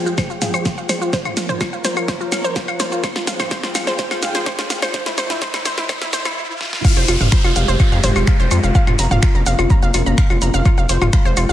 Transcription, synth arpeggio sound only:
0.06 0.15 F4 medium
0.18 0.27 C5 medium
0.30 0.39 F4 medium
0.42 0.47 F5 medium
0.54 0.63 C5 medium
0.65 0.75 F4 medium
0.78 0.83 F5 medium
0.89 0.99 C5 medium
1.02 1.10 F4 medium
1.13 1.23 C5 medium
1.25 1.34 F4 medium
1.37 1.43 F5 medium
1.49 1.58 C5 loud
1.61 1.70 F4 medium
1.73 1.78 F5 medium
1.85 1.94 C5 loud
1.97 2.06 F4 medium
2.08 2.18 C5 medium
2.21 2.29 F4 medium
2.32 2.38 F5 medium
2.44 2.53 C5 loud
2.56 2.65 F4 medium
2.68 2.74 F5 medium
2.80 2.89 C5 loud
2.92 3.01 F4 medium
3.04 3.13 C5 loud
3.16 3.25 F4 medium
3.27 3.33 F5 medium
3.40 3.48 C5 loud
3.51 3.61 C5 loud
3.63 3.72 F4 medium
3.75 3.81 F5 medium
3.87 3.96 C5 loud
3.99 4.08 C5 loud
4.11 4.20 F4 medium
4.23 4.28 F5 medium
4.35 4.44 C5 loud
4.46 4.56 C5 loud
4.59 4.68 F4 medium
4.70 4.76 F5 medium
4.82 4.91 C5 loud
4.94 5.03 C5 loud
5.06 5.15 E4 medium
5.18 5.27 C5 loud
5.30 5.39 E4 medium
5.42 5.51 C5 loud
5.54 5.63 E4 medium
5.66 5.75 C5 loud
5.78 5.87 E4 medium
5.89 5.99 C5 loud
6.02 6.10 E4 medium
6.13 6.23 C5 loud
6.25 6.34 E4 medium
6.85 6.90 F5 medium
6.97 7.06 C5 loud
7.08 7.18 F4 medium
7.21 7.26 F5 medium
7.32 7.42 C5 loud
7.44 7.53 F4 medium
7.56 7.62 F5 medium
7.68 7.77 C5 loud
7.80 7.89 F4 medium
7.92 7.97 F5 medium
8.04 8.13 C5 loud
8.16 8.25 F4 medium
8.27 8.33 F5 medium
8.40 8.49 C5 loud
8.51 8.61 F4 medium
8.63 8.69 F5 medium
8.75 8.84 F5 loud
8.87 8.96 F4 medium
8.99 9.04 A#5 medium
9.11 9.20 F5 loud
9.23 9.32 F4 medium
9.35 9.40 A#5 medium
9.46 9.56 F5 loud
9.59 9.68 F4 medium
9.70 9.76 A#5 medium
9.83 9.91 F5 loud
9.94 10.03 F4 medium
10.06 10.12 A#5 medium
10.18 10.27 F5 loud
10.30 10.39 F4 medium
10.42 10.47 A#5 medium
10.54 10.63 F5 loud
10.66 10.75 F4 medium
10.78 10.83 F5 medium
10.89 10.99 C5 loud
11.02 11.10 F4 medium
11.13 11.19 F5 medium
11.25 11.34 C5 loud
11.37 11.46 F4 medium
11.49 11.53 F5 medium

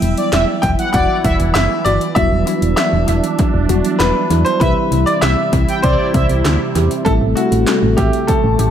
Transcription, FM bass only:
0.02 0.15 E1 loud
0.33 0.46 E1 loud
0.63 0.77 E1 loud
0.94 1.07 E1 loud
1.25 1.38 E1 loud
1.40 1.53 E1 medium
1.55 1.68 F#1 loud
1.86 1.99 G1 medium
2.16 2.30 E1 loud
2.32 2.45 E1 loud
2.62 2.76 E1 loud
2.93 3.06 E1 loud
3.08 3.22 E1 loud
3.54 3.67 E1 loud
3.69 3.83 E1 loud
4.00 4.13 E1 medium
4.31 4.44 E2 loud
4.61 4.75 C2 loud
4.92 5.05 C2 loud
5.22 5.36 C2 loud
5.53 5.66 C2 loud
5.84 5.97 C2 loud
6.14 6.28 C2 loud
6.30 6.43 C2 loud
6.45 6.58 D2 loud
6.75 6.89 E2 loud
7.06 7.19 A1 loud
7.21 7.35 A1 medium
7.52 7.65 A1 loud
7.83 7.96 A1 loud
7.98 8.11 A1 loud
8.44 8.57 A1 loud
8.59 8.71 A1 loud

